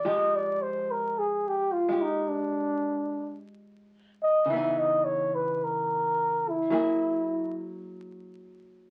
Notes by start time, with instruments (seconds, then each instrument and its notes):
0.05 hollow-body jazz guitar F3 G#3 G4, flugelhorn D#5
0.36 flugelhorn D5
0.62 flugelhorn C5
0.91 flugelhorn A#4
1.19 flugelhorn G#4
1.48 flugelhorn G4
1.72 flugelhorn F4
1.89 hollow-body jazz guitar G#3 G4
2.02 flugelhorn D#4
2.28 flugelhorn D4
4.23 flugelhorn D#5
4.46 hollow-body jazz guitar C#3
4.50 hollow-body jazz guitar E3 B3, flugelhorn E5
4.56 hollow-body jazz guitar D#4
4.79 flugelhorn D#5
5.04 flugelhorn C#5
5.34 flugelhorn B4
5.64 flugelhorn A#4
6.49 flugelhorn E4
6.70 hollow-body jazz guitar F#3 A#3 E4 G#4